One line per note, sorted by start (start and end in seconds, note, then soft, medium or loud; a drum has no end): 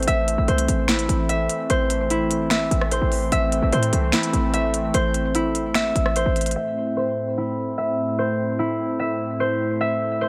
0.00 3.28 A3 medium
0.00 3.28 C4 medium
0.00 0.89 E4 medium
0.00 0.48 C5 loud
0.00 closed hi-hat medium
0.07 0.37 A1 loud
0.07 6.52 E3 medium
0.07 1.29 E5 loud
0.07 closed hi-hat medium
0.28 closed hi-hat medium
0.38 0.48 A1 loud
0.48 0.68 C2 loud
0.48 1.70 C5 medium
0.48 closed hi-hat soft
0.58 closed hi-hat medium
0.68 1.07 A1 loud
0.68 closed hi-hat medium
0.88 2.10 E4 medium
0.88 finger snap medium
0.88 snare loud
0.88 closed hi-hat soft
0.99 closed hi-hat medium
1.09 1.48 A1 loud
1.09 closed hi-hat medium
1.29 2.50 E5 loud
1.29 closed hi-hat medium
1.49 closed hi-hat medium
1.70 2.67 A1 loud
1.70 2.91 C5 loud
1.70 closed hi-hat medium
1.90 closed hi-hat medium
2.10 4.13 E4 medium
2.10 closed hi-hat medium
2.31 closed hi-hat medium
2.50 3.32 E5 loud
2.50 finger snap medium
2.50 snare loud
2.50 closed hi-hat medium
2.71 3.00 A1 loud
2.71 closed hi-hat medium
2.81 cross-stick loud
2.91 3.72 C5 loud
2.91 closed hi-hat medium
3.02 3.31 A1 loud
3.12 open hi-hat medium
3.32 3.61 A1 loud
3.32 6.53 A3 medium
3.32 6.53 C4 medium
3.32 4.53 E5 loud
3.32 closed hi-hat medium
3.52 closed hi-hat medium
3.62 3.72 A1 loud
3.73 3.92 A2 loud
3.73 4.94 C5 loud
3.73 closed hi-hat soft
3.83 closed hi-hat medium
3.93 4.12 C2 loud
3.93 closed hi-hat medium
4.12 5.35 E4 loud
4.12 finger snap medium
4.12 snare loud
4.12 closed hi-hat soft
4.23 closed hi-hat medium
4.33 4.92 A1 loud
4.33 closed hi-hat medium
4.54 5.75 E5 loud
4.54 closed hi-hat medium
4.74 closed hi-hat medium
4.94 5.91 A1 loud
4.94 6.16 C5 loud
4.94 closed hi-hat medium
5.14 closed hi-hat medium
5.35 7.37 E4 medium
5.35 closed hi-hat medium
5.55 closed hi-hat medium
5.74 6.56 E5 loud
5.74 finger snap medium
5.74 snare loud
5.74 closed hi-hat medium
5.96 6.25 A1 loud
5.96 closed hi-hat medium
6.06 cross-stick medium
6.16 6.96 C5 loud
6.16 closed hi-hat medium
6.26 6.55 A1 loud
6.36 closed hi-hat soft
6.36 open hi-hat medium
6.41 closed hi-hat medium
6.46 closed hi-hat medium
6.51 closed hi-hat medium
6.56 10.29 A2 medium
6.56 10.29 A3 medium
6.56 10.29 C4 medium
6.56 10.29 E4 medium
6.56 7.77 E5 loud
6.97 8.18 C5 medium
7.38 8.59 E4 medium
7.78 8.99 E5 medium
8.19 9.40 C5 medium
8.59 10.29 E4 medium
8.99 9.80 E5 medium
9.40 10.21 C5 medium
9.81 10.29 E5 loud
10.21 10.29 C5 medium